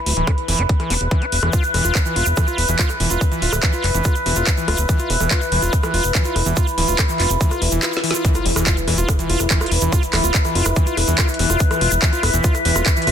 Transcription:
Already playing: E4 B4 E5
0.06 D1, open hi-hat
0.17 D1 E3
0.27 E4, kick, cross-stick, closed hi-hat
0.38 closed hi-hat
0.48 F1 E3, open hi-hat
0.59 F1 E4
0.69 kick, closed hi-hat
0.80 E3, cross-stick, closed hi-hat
0.90 E1 E4, open hi-hat
1.01 E1, closed hi-hat
1.11 E3, kick, closed hi-hat
1.22 E4, closed hi-hat
1.32 E1, open hi-hat
1.43 E1 E3, cross-stick
1.53 F4, kick, closed hi-hat, shaker
1.63 closed hi-hat, shaker
1.74 E1 E3, cross-stick, open hi-hat
1.85 E1 F4, closed hi-hat, shaker
1.95 kick, clap, closed hi-hat, shaker
2.06 E3, closed hi-hat, shaker
2.16 E1 F4, open hi-hat
2.26 E1, closed hi-hat, shaker
2.36 E3, kick, cross-stick, closed hi-hat, shaker
2.47 F4, closed hi-hat, shaker
2.58 E1, open hi-hat
2.68 E1 E3, closed hi-hat, shaker
2.79 F4, kick, clap, closed hi-hat, shaker
2.89 cross-stick, closed hi-hat, shaker
3.00 E1 E3, open hi-hat
3.11 E1 F4, closed hi-hat, shaker
3.21 kick, closed hi-hat, shaker
3.32 E3, closed hi-hat, shaker
3.42 D1 F4, open hi-hat
3.53 D1, cross-stick, closed hi-hat, shaker
3.63 E3, kick, clap, closed hi-hat, shaker
3.73 F4, closed hi-hat, shaker
3.84 F1, clap, open hi-hat
3.94 F1 E3, closed hi-hat, shaker
4.04 F4, kick, cross-stick, closed hi-hat, shaker
4.15 closed hi-hat, shaker
4.26 E1 E3, open hi-hat
4.36 E1 F4, closed hi-hat, shaker
4.47 kick, clap, closed hi-hat, shaker
4.57 E3, closed hi-hat, shaker
4.68 D1 F4, cross-stick, open hi-hat
4.78 D1, closed hi-hat, shaker
4.89 E3, kick, closed hi-hat, shaker
4.99 F4, closed hi-hat, shaker
5.10 E1, open hi-hat
5.20 E1 E3, cross-stick, closed hi-hat, shaker
5.31 F4, kick, clap, closed hi-hat, shaker
5.41 closed hi-hat, shaker
5.52 E1 E3, open hi-hat
5.62 E1 F4, closed hi-hat, shaker
5.73 kick, closed hi-hat, shaker
5.83 E3, cross-stick, closed hi-hat, shaker
5.94 E1 F4, open hi-hat
6.04 E1, closed hi-hat, shaker
6.15 E3, kick, clap, closed hi-hat, shaker
6.24 F4, closed hi-hat, shaker
6.36 E1, cross-stick, open hi-hat
6.46 E1 E3, closed hi-hat, shaker
6.56 F4, kick, closed hi-hat, shaker
6.67 closed hi-hat, shaker
6.78 D1 E3, open hi-hat
6.88 D1 F4, closed hi-hat, shaker
6.99 kick, cross-stick, clap, closed hi-hat, shaker
7.09 E3, closed hi-hat, shaker
7.20 F1 F4, clap, open hi-hat
7.30 F1, closed hi-hat, shaker
7.41 E3, kick, closed hi-hat, shaker
7.51 F4, cross-stick, closed hi-hat, shaker
7.62 E1, open hi-hat
7.72 E1 E3, closed hi-hat, shaker
7.82 F4, snare, clap, closed hi-hat, shaker
7.93 snare, closed hi-hat, shaker
8.04 E3, open hi-hat
8.11 F4, snare, closed hi-hat, shaker
8.25 E3 B4, kick, closed hi-hat, impact, shaker
8.35 F4, cross-stick, closed hi-hat, shaker
8.46 E1, open hi-hat
8.56 E1 E3, cross-stick, closed hi-hat, shaker
8.66 F4, kick, clap, closed hi-hat, shaker
8.77 closed hi-hat, shaker
8.88 E1 E3, cross-stick, open hi-hat
8.98 E1 F4, closed hi-hat, shaker
9.09 kick, cross-stick, closed hi-hat, shaker
9.19 E3, closed hi-hat, shaker
9.30 E1 F4, open hi-hat
9.40 E1, cross-stick, closed hi-hat, shaker
9.50 E3, kick, clap, closed hi-hat, shaker
9.61 F4, cross-stick, closed hi-hat, shaker
9.66 closed hi-hat
9.71 E1, open hi-hat
9.81 E1 E3, closed hi-hat, shaker
9.92 F4, kick, cross-stick, closed hi-hat, shaker
10.03 closed hi-hat, shaker
10.13 D1 E3, cross-stick, clap, open hi-hat
10.24 D1 F4, closed hi-hat, shaker
10.34 kick, clap, closed hi-hat, shaker
10.45 E3, cross-stick, closed hi-hat, shaker
10.55 F1 F4, open hi-hat
10.66 F1, cross-stick, closed hi-hat, shaker
10.76 E3, kick, closed hi-hat, shaker
10.87 F4, closed hi-hat, shaker
10.97 E1, cross-stick, open hi-hat
11.08 E1 E3, closed hi-hat, shaker
11.18 F4, kick, cross-stick, clap, closed hi-hat, shaker
11.28 closed hi-hat, shaker
11.34 closed hi-hat
11.39 E1 E3, open hi-hat
11.50 E1 F4, cross-stick, closed hi-hat, shaker
11.59 kick, closed hi-hat, shaker
11.71 E3, cross-stick, closed hi-hat, shaker
11.81 E1 F4, open hi-hat
11.91 E1, closed hi-hat, shaker
12.02 E3, kick, cross-stick, clap, closed hi-hat, shaker
12.13 F4, closed hi-hat, shaker
12.23 E1, cross-stick, open hi-hat
12.34 E1 E3, closed hi-hat, shaker
12.44 F4, kick, closed hi-hat, shaker
12.55 cross-stick, closed hi-hat, shaker
12.65 E1 E3, open hi-hat
12.76 E1 F4, cross-stick, shaker
12.86 kick, clap, closed hi-hat, shaker
12.96 E3, closed hi-hat, shaker
13.02 closed hi-hat
13.07 E1 F4, cross-stick, open hi-hat

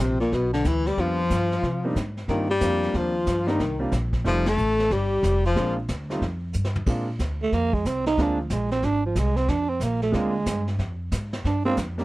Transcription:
0.00 A#1 C3 C4
0.20 A#2 A#3, snare
0.32 B1 B2 B3, brush sweep, kick, snare
0.53 D3 D4, snare
0.64 D2 E3 E4, kick, snare, hi-hat pedal
0.86 G3 G4, snare
0.97 F2 F3 G3 B3 D4 F4, brush sweep, kick, snare
1.30 G2, kick, snare, hi-hat pedal
1.51 snare
1.63 C3, brush sweep, kick, snare
1.84 G3 A#3 C4 D4 D#4
1.95 G#2, kick, snare, hi-hat pedal
2.17 snare
2.28 G2 D#3 G3 A#3 C4 D4 D#4 F4, brush sweep, kick, snare
2.50 G3 G4
2.60 F2 G3 A#3 C4 D4 F4, kick, snare, hi-hat pedal
2.83 snare
2.94 D#2 F3 F4, brush sweep, kick, snare
3.26 G2, kick, snare, hi-hat pedal
3.46 D#3 G3 A#3 C4 D4 D#4, snare
3.59 C2, brush sweep, kick, snare
3.79 G3 A#3 C4 D4 F4
3.92 A#1, kick, snare, hi-hat pedal
4.13 kick, snare
4.24 F1 F3 G3 A3 C4 D#4 F4, brush sweep, kick, snare
4.46 A3 A4, snare, ride
4.58 A1, hi-hat pedal
4.79 snare
4.90 G1 G3 G4, brush sweep, kick, snare
5.23 F1, kick, snare, hi-hat pedal
5.45 F3 F4, snare
5.56 A#1 G#3 A#3 C4 D4 F4, brush sweep, kick, snare
5.88 D2, kick, snare, hi-hat pedal
6.10 G3 A3 C4 D#4 F4, snare
6.21 F2, brush sweep, kick, snare
6.53 G2, hi-hat pedal
6.64 snare
6.76 floor tom
6.86 A#2 G#3 A#3 C4 D4 F4, brush sweep, kick, snare, crash
7.19 D2, kick, snare, hi-hat pedal
7.43 A3
7.52 F2 A#3, brush sweep, kick, snare
7.73 G#3, kick
7.85 C2 C4, kick, snare, hi-hat pedal
8.06 D#4, snare
8.17 D2 G#3 A#3 C4 D4 F4, brush sweep, kick, snare
8.22 D4
8.41 F3
8.50 A#1 G#3, kick, snare, hi-hat pedal
8.71 C4, snare
8.82 G#1 D4, brush sweep, kick, snare
9.06 F3
9.15 C2 G#3, kick, snare, hi-hat pedal
9.36 C4, snare
9.48 F2 D4, brush sweep, kick, snare
9.69 C4
9.80 A#1 A#3, kick, snare, hi-hat pedal
10.02 A3, snare
10.12 D2 G#3 A#3 C4 D4 F4, brush sweep, kick, snare
10.46 G2, kick, snare, hi-hat pedal
10.67 snare
10.79 F2, brush sweep, kick, snare
11.11 G#2, kick, snare, hi-hat pedal
11.33 snare
11.44 G2 D4, brush sweep, kick, snare
11.65 G#3 A#3 C4 D4 F4
11.77 F2, kick, snare, hi-hat pedal
11.98 G3 A#3 C#4 D#4 G4, snare

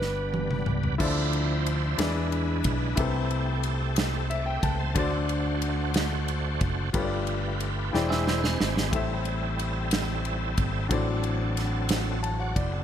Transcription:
Already playing: G1 G2 G3 B3 D4 G4 B4 D5
0.02 snare
0.34 high tom
0.51 mid tom
0.66 C#2, mid tom
0.83 floor tom
0.98 D2 D3 F3 D4 E4 F4 A4 C5 D5 E5, kick, crash
1.33 ride
1.66 ride
1.98 E2 E3 G#3 D4 E4 G#4 B4 D5, snare, ride
2.32 ride
2.64 B1, kick, ride
2.96 C2 C3 A3 C4 E4 G4 A4 B4, kick, ride
3.00 C5
3.31 ride
3.63 ride
3.96 snare, ride
4.30 D5 E5, ride
4.46 G4 E5 G5
4.62 C#2 B4 G5 A5, kick, ride
4.79 C5 A5
4.94 D2 D3 A3 D4 F#4 A4 C5, kick, ride
4.99 D5
5.29 ride
5.62 ride
5.94 snare, ride
6.28 ride
6.61 F#1, kick, ride
6.93 G1 G2 A3 F4 G4 A4 B4 C#5, kick, ride
7.02 D5
7.27 ride
7.60 ride
7.93 E1 E3 G#3 D4 E4 G#4 C5 D5 G5, snare
8.10 G#4 E5, snare
8.27 E4 C5, snare
8.44 C4 G#4, snare
8.61 G#1, snare
8.77 snare
8.91 A1 A2 G3 C4 E4 G4 A4 C5, kick, ride
8.96 E5
9.25 ride
9.59 ride
9.91 snare, ride
10.25 ride
10.58 G#1, kick, ride
10.88 A1 A2 F3 C4 D4 F#4 A4 C5, kick, ride
10.93 D5
10.98 F#3
11.24 ride
11.57 snare, ride
11.89 snare, ride
12.23 A5, ride
12.39 F#4 D5 F#5
12.56 F#1 E4 C5 D5, kick, ride
12.73 C4 A4

